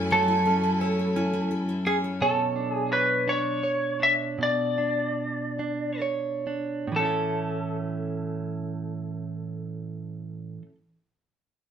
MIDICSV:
0, 0, Header, 1, 5, 480
1, 0, Start_track
1, 0, Key_signature, 3, "major"
1, 0, Tempo, 705053
1, 75, Time_signature, 6, 3, 24, 8
1, 2476, Tempo, 772201
1, 3436, Tempo, 843882
1, 3916, Tempo, 907716
1, 4396, Tempo, 930233
1, 6859, End_track
2, 0, Start_track
2, 0, Title_t, "Lead electric guitar"
2, 0, Program_c, 0, 29
2, 84, Note_on_c, 0, 69, 86
2, 1004, Note_off_c, 0, 69, 0
2, 1272, Note_on_c, 0, 68, 63
2, 1336, Note_off_c, 0, 68, 0
2, 1511, Note_on_c, 0, 69, 68
2, 1851, Note_off_c, 0, 69, 0
2, 1851, Note_on_c, 0, 68, 68
2, 1990, Note_off_c, 0, 68, 0
2, 1992, Note_on_c, 0, 71, 75
2, 2240, Note_off_c, 0, 71, 0
2, 2241, Note_on_c, 0, 73, 78
2, 2719, Note_off_c, 0, 73, 0
2, 2721, Note_on_c, 0, 76, 77
2, 2783, Note_off_c, 0, 76, 0
2, 2967, Note_on_c, 0, 74, 68
2, 3905, Note_off_c, 0, 74, 0
2, 4411, Note_on_c, 0, 69, 48
2, 6298, Note_off_c, 0, 69, 0
2, 6859, End_track
3, 0, Start_track
3, 0, Title_t, "Steel-string acoustic guitar"
3, 0, Program_c, 1, 25
3, 0, Note_on_c, 1, 69, 45
3, 0, Note_on_c, 1, 73, 51
3, 72, Note_on_c, 1, 64, 59
3, 183, Note_off_c, 1, 64, 0
3, 192, Note_on_c, 1, 64, 47
3, 301, Note_off_c, 1, 69, 0
3, 310, Note_on_c, 1, 69, 47
3, 424, Note_off_c, 1, 64, 0
3, 432, Note_on_c, 1, 64, 50
3, 548, Note_off_c, 1, 73, 0
3, 551, Note_on_c, 1, 73, 51
3, 668, Note_off_c, 1, 69, 0
3, 675, Note_on_c, 1, 69, 47
3, 783, Note_off_c, 1, 64, 0
3, 791, Note_on_c, 1, 64, 61
3, 900, Note_off_c, 1, 64, 0
3, 909, Note_on_c, 1, 64, 48
3, 1019, Note_off_c, 1, 69, 0
3, 1027, Note_on_c, 1, 69, 48
3, 1141, Note_off_c, 1, 64, 0
3, 1149, Note_on_c, 1, 64, 49
3, 1265, Note_off_c, 1, 73, 0
3, 1268, Note_on_c, 1, 73, 50
3, 1381, Note_off_c, 1, 69, 0
3, 1389, Note_on_c, 1, 69, 43
3, 1553, Note_off_c, 1, 64, 0
3, 1554, Note_off_c, 1, 69, 0
3, 1894, Note_off_c, 1, 73, 0
3, 6859, End_track
4, 0, Start_track
4, 0, Title_t, "Clean electric guitar"
4, 0, Program_c, 2, 27
4, 0, Note_on_c, 2, 54, 64
4, 0, Note_on_c, 2, 61, 46
4, 0, Note_on_c, 2, 64, 61
4, 0, Note_on_c, 2, 69, 54
4, 79, Note_off_c, 2, 54, 0
4, 82, Note_on_c, 2, 54, 73
4, 83, Note_off_c, 2, 69, 0
4, 93, Note_on_c, 2, 69, 60
4, 103, Note_off_c, 2, 64, 0
4, 317, Note_off_c, 2, 61, 0
4, 320, Note_on_c, 2, 61, 49
4, 545, Note_off_c, 2, 69, 0
4, 553, Note_on_c, 2, 69, 49
4, 788, Note_off_c, 2, 61, 0
4, 790, Note_on_c, 2, 61, 54
4, 1028, Note_off_c, 2, 69, 0
4, 1267, Note_off_c, 2, 61, 0
4, 1270, Note_on_c, 2, 61, 43
4, 1507, Note_on_c, 2, 47, 71
4, 1512, Note_on_c, 2, 73, 57
4, 1741, Note_on_c, 2, 62, 49
4, 1761, Note_off_c, 2, 61, 0
4, 1986, Note_off_c, 2, 73, 0
4, 1989, Note_on_c, 2, 73, 50
4, 2221, Note_off_c, 2, 62, 0
4, 2229, Note_on_c, 2, 62, 48
4, 2465, Note_off_c, 2, 54, 0
4, 2472, Note_off_c, 2, 73, 0
4, 2475, Note_on_c, 2, 73, 50
4, 2694, Note_off_c, 2, 62, 0
4, 2701, Note_on_c, 2, 62, 37
4, 2933, Note_off_c, 2, 47, 0
4, 2941, Note_on_c, 2, 47, 57
4, 2959, Note_off_c, 2, 73, 0
4, 3179, Note_off_c, 2, 62, 0
4, 3186, Note_on_c, 2, 62, 40
4, 3663, Note_off_c, 2, 62, 0
4, 3670, Note_on_c, 2, 62, 45
4, 3911, Note_on_c, 2, 73, 47
4, 4144, Note_off_c, 2, 62, 0
4, 4150, Note_on_c, 2, 62, 37
4, 4363, Note_off_c, 2, 47, 0
4, 4365, Note_on_c, 2, 45, 61
4, 4389, Note_on_c, 2, 52, 52
4, 4410, Note_on_c, 2, 57, 59
4, 4424, Note_off_c, 2, 62, 0
4, 4426, Note_on_c, 2, 61, 59
4, 4442, Note_on_c, 2, 64, 55
4, 4455, Note_off_c, 2, 73, 0
4, 4457, Note_on_c, 2, 69, 57
4, 6274, Note_off_c, 2, 45, 0
4, 6297, Note_off_c, 2, 52, 0
4, 6318, Note_off_c, 2, 57, 0
4, 6335, Note_off_c, 2, 61, 0
4, 6351, Note_off_c, 2, 64, 0
4, 6365, Note_off_c, 2, 69, 0
4, 6859, End_track
5, 0, Start_track
5, 0, Title_t, "String section"
5, 0, Program_c, 3, 48
5, 0, Note_on_c, 3, 42, 71
5, 0, Note_on_c, 3, 54, 57
5, 0, Note_on_c, 3, 57, 57
5, 0, Note_on_c, 3, 64, 60
5, 0, Note_on_c, 3, 80, 70
5, 1473, Note_off_c, 3, 57, 0
5, 1474, Note_off_c, 3, 42, 0
5, 1474, Note_off_c, 3, 54, 0
5, 1474, Note_off_c, 3, 80, 0
5, 1476, Note_off_c, 3, 64, 0
5, 6859, End_track
0, 0, End_of_file